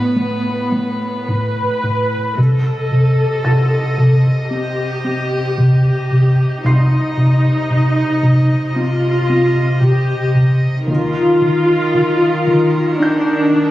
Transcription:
0.00 2.14 A2 soft
0.00 1.28 B3 soft
0.00 2.14 B4 soft
0.00 1.80 A6 soft
0.16 0.50 A3 soft
0.72 1.06 A3 soft
1.27 1.61 A2 medium
1.27 2.37 B4 soft
1.84 2.16 A2 soft
2.37 3.42 C2 soft
2.37 6.61 C3 soft
2.37 2.71 C3 medium
2.37 4.51 A4 soft
2.37 6.61 D#5 soft
2.91 3.24 C3 soft
3.44 3.77 C3 soft
3.44 6.60 A5 soft
3.44 6.61 A6 soft
3.98 4.30 C3 medium
4.51 4.83 C4 soft
4.51 5.56 G4 soft
5.05 5.37 C4 soft
5.57 5.90 C3 medium
5.57 6.62 G4 soft
6.11 6.43 C3 soft
6.64 7.67 C2 soft
6.64 10.85 C3 soft
6.64 6.96 C3 medium
6.64 8.77 D#4 soft
6.64 10.84 D#5 soft
6.64 9.80 C6 soft
6.64 9.80 C7 soft
7.17 7.49 C3 soft
7.70 8.03 C3 soft
8.23 8.55 C3 medium
8.76 9.08 C4 soft
8.76 9.83 F4 medium
9.30 9.62 C4 soft
9.81 10.14 C3 medium
9.81 10.35 G4 medium
10.35 10.67 C3 soft
10.88 11.91 D#2 soft
10.88 11.20 D#3 medium
10.88 13.71 D#3 medium
10.88 12.96 F4 medium
10.88 13.71 A#4 soft
11.42 11.74 D#3 medium
11.95 12.26 D#3 soft
12.47 12.79 D#3 medium
13.00 13.71 D4 medium
13.00 13.32 D#4 soft
13.00 13.71 G6 soft
13.53 13.71 D#4 soft

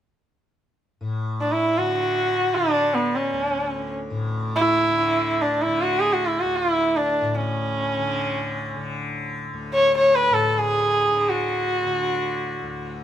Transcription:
1.01 4.10 A2 soft
1.41 1.53 D4 medium
1.52 1.80 E4 medium
1.78 2.56 D3 soft
1.78 2.57 F#4 medium
2.55 4.88 D3 soft
2.55 2.96 D4 medium
2.94 3.17 B3 medium
3.16 3.94 C#4 medium
3.33 6.43 D2 soft
4.10 7.21 A2 medium
4.56 5.43 E4 medium
4.88 5.66 D3 soft
5.42 5.64 D4 medium
5.62 5.83 E4 medium
5.66 7.99 D3 medium
5.82 6.01 F#4 medium
5.99 6.14 G#4 medium
6.13 6.28 F#4 medium
6.27 6.42 E4 medium
6.40 9.53 D2 soft
6.40 6.59 F#4 medium
6.57 6.72 F4 medium
6.72 6.98 E4 medium
6.97 7.36 D4 medium
7.21 10.30 A2 soft
7.35 8.91 C#4 medium
7.99 8.76 D3 soft
8.76 11.08 D3 soft
9.54 12.62 D2 soft
9.74 9.96 C#5 medium
9.97 10.17 C#5 medium
10.15 10.35 B4 medium
10.30 13.04 A2 soft
10.30 10.61 A4 medium
10.60 11.31 G#4 medium
11.08 11.86 D3 soft
11.29 12.92 F#4 medium
11.86 13.04 D3 medium
12.63 13.04 D2 soft

